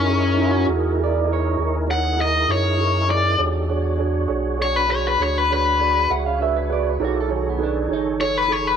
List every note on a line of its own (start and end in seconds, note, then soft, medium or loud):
0.00 0.66 F#2 medium
0.00 0.66 C#4 medium
0.00 3.37 D#4 medium
0.00 3.37 E4 soft
0.00 3.37 G#4 medium
0.00 3.37 A#4 medium
0.07 0.30 D#4 soft
0.07 0.31 E4 soft
0.07 0.31 G#4 soft
0.07 0.31 C#5 soft
0.37 0.61 D#4 medium
0.37 0.61 E4 medium
0.37 0.61 G#4 medium
0.37 0.62 A#4 medium
0.42 0.99 F#4 medium
0.67 1.56 E2 medium
0.67 0.90 D#4 medium
0.67 0.91 E4 medium
0.67 0.91 G#4 medium
0.67 0.92 A#4 medium
0.97 1.21 D#4 medium
0.97 1.21 E4 medium
0.97 1.21 G#4 medium
0.97 1.22 A#4 medium
1.04 1.31 D5 medium
1.26 1.50 D#4 medium
1.26 1.50 E4 medium
1.26 1.50 G#4 medium
1.26 1.51 A#4 medium
1.33 1.75 C#5 medium
1.57 2.46 D#2 medium
1.57 1.81 D#4 medium
1.57 1.81 E4 soft
1.57 1.81 G#4 soft
1.57 1.82 A#4 medium
1.87 2.11 D#4 soft
1.87 2.11 E4 soft
1.87 2.11 G#4 soft
1.87 2.11 C#5 soft
1.87 2.19 F#5 medium
2.17 2.41 D#4 soft
2.17 2.41 E4 soft
2.17 2.41 G#4 soft
2.17 2.42 A#4 medium
2.21 2.50 D#5 medium
2.47 3.36 F#2 medium
2.47 2.71 D#4 soft
2.47 2.71 E4 soft
2.47 2.72 G#4 soft
2.47 2.72 A#4 soft
2.52 3.09 C#5 medium
2.77 3.01 D#4 soft
2.77 3.01 E4 soft
2.77 3.02 G#4 soft
2.77 3.02 A#4 soft
3.08 3.31 D#4 soft
3.08 3.32 E4 soft
3.08 3.32 G#4 soft
3.08 3.32 C#5 soft
3.08 3.39 D5 medium
3.37 4.27 E2 medium
3.37 3.61 D4 medium
3.37 3.69 D#4 soft
3.37 3.61 F#4 medium
3.37 3.69 G4 soft
3.37 3.62 G#4 medium
3.37 3.69 A4 medium
3.37 3.62 C#5 medium
3.37 3.69 D5 medium
3.68 3.92 D4 medium
3.68 6.97 D4 medium
3.68 3.92 F#4 medium
3.68 6.98 F#4 medium
3.68 3.92 G#4 medium
3.68 6.98 G#4 medium
3.68 3.92 C#5 medium
3.68 6.98 C#5 medium
3.97 4.21 D4 medium
3.97 4.21 F#4 medium
3.97 4.22 G#4 medium
3.97 4.22 C#5 medium
4.27 5.17 B1 medium
4.27 4.51 D4 medium
4.27 4.51 F#4 medium
4.27 4.51 G#4 medium
4.27 4.52 C#5 medium
4.56 4.81 D4 soft
4.56 4.81 F#4 soft
4.56 4.82 G#4 soft
4.56 4.82 C#5 medium
4.62 4.76 C#5 medium
4.76 4.90 B4 medium
4.87 5.11 D4 medium
4.87 5.11 F#4 soft
4.87 5.12 G#4 soft
4.87 5.12 C#5 medium
4.91 5.05 C#5 medium
5.08 5.21 B4 medium
5.18 6.07 D2 medium
5.18 5.42 D4 soft
5.18 5.42 F#4 soft
5.18 5.42 G#4 soft
5.18 5.43 C#5 soft
5.23 5.38 C#5 medium
5.38 5.51 B4 medium
5.49 5.72 D4 soft
5.49 5.73 F#4 soft
5.49 5.73 G#4 soft
5.49 5.73 C#5 medium
5.53 6.10 B4 medium
5.78 6.02 D4 soft
5.78 6.03 F#4 soft
5.78 6.03 G#4 soft
5.78 6.03 D5 medium
6.08 6.98 C#2 medium
6.08 6.32 D4 soft
6.08 6.32 F#4 soft
6.08 6.33 G#4 soft
6.08 6.33 E5 soft
6.08 6.25 F#5 medium
6.26 6.40 F5 medium
6.40 6.63 D4 medium
6.40 6.63 F#4 medium
6.40 6.63 G#4 soft
6.40 6.64 B4 medium
6.40 6.56 E5 medium
6.56 6.71 B4 medium
6.68 6.92 D4 medium
6.68 6.92 F#4 medium
6.68 6.93 G#4 medium
6.68 6.93 B4 medium
6.73 6.90 D5 medium
6.90 7.02 B4 medium
7.00 7.88 B1 medium
7.00 7.23 D#4 medium
7.00 7.30 E4 soft
7.00 7.23 G#4 medium
7.00 7.23 A4 medium
7.00 7.29 A4 medium
7.00 7.31 A#4 medium
7.00 7.24 C#5 medium
7.00 7.30 D5 medium
7.04 7.17 F#4 medium
7.20 7.36 A4 medium
7.28 8.77 D#3 medium
7.28 7.52 D#4 medium
7.28 7.52 G#4 medium
7.28 8.77 G#4 medium
7.28 7.52 A4 medium
7.28 8.77 A4 soft
7.28 7.53 C#5 medium
7.28 8.77 C#5 medium
7.36 7.48 F#4 medium
7.50 7.62 B3 medium
7.58 7.82 D#4 medium
7.58 7.82 G#4 medium
7.58 7.82 A4 medium
7.58 7.83 B4 medium
7.63 7.91 D4 medium
7.88 8.77 F#1 medium
7.88 8.12 D#4 medium
7.88 8.12 G#4 medium
7.88 8.13 A4 medium
7.88 8.13 C#5 medium
7.93 8.21 D#4 medium
8.20 8.43 D#4 soft
8.20 8.43 G#4 soft
8.20 8.43 A4 soft
8.20 8.37 C#5 medium
8.20 8.43 C#5 medium
8.37 8.52 B4 medium
8.48 8.72 D#4 soft
8.48 8.72 G#4 soft
8.48 8.73 A4 soft
8.48 8.73 C#5 medium
8.52 8.67 C#5 medium
8.67 8.77 B4 medium